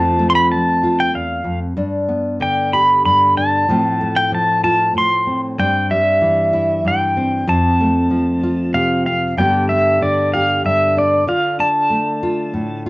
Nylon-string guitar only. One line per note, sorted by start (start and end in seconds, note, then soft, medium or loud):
0.00 1.13 F2 medium
0.00 0.51 F3 medium
0.00 0.18 A3 medium
0.00 1.74 C4 medium
0.00 0.82 F4 medium
0.19 1.74 A3 medium
0.83 1.74 F4 medium
1.14 1.44 E2 soft
1.44 1.76 F2 medium
1.77 3.04 G2 medium
1.77 3.36 D4 medium
2.08 3.63 B3 soft
2.40 3.67 D3 medium
2.73 3.64 G4 medium
3.05 3.64 G2 soft
3.37 3.64 D4 soft
3.69 4.93 A2 medium
3.69 4.31 F3 medium
3.69 4.00 A3 medium
3.69 5.26 C4 medium
3.69 4.63 F4 medium
4.01 5.55 A3 soft
4.32 5.54 F3 medium
4.64 5.54 F4 medium
4.94 5.58 A2 medium
5.27 5.59 C4 medium
5.58 6.84 G2 medium
5.58 7.16 C4 medium
5.91 7.48 G3 medium
6.21 7.44 E3 medium
6.53 7.48 E4 medium
6.85 7.44 G2 medium
7.17 7.44 C4 soft
7.47 9.34 F2 medium
7.47 9.06 C4 medium
7.81 9.34 A3 soft
8.10 9.33 F3 medium
8.43 9.34 F4 medium
8.74 9.34 C3 soft
9.07 9.34 C4 soft
9.37 10.63 G2 medium
9.37 10.01 D3 medium
9.37 9.69 B3 medium
9.37 10.96 D4 soft
9.37 10.33 G4 medium
9.70 11.24 B3 medium
10.02 11.26 D3 medium
10.34 11.24 G4 medium
10.64 11.24 G2 medium
10.97 11.59 D4 soft
11.27 12.89 D3 medium
11.27 12.22 F4 medium
11.59 12.89 D4 medium
11.90 12.89 A3 medium
12.23 12.85 F4 medium
12.54 12.89 A2 soft
12.86 12.89 F4 medium